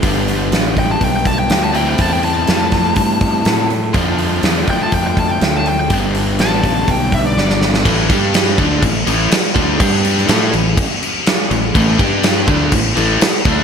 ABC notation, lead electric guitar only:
X:1
M:4/4
L:1/16
Q:1/4=123
K:Am
V:1 name="Lead electric guitar"
z6 g a g g a g g a g g | a g a12 z2 | z6 g a g g a g g a g g | z4 a4 g2 e d d2 z2 |
z16 | z16 | z16 |]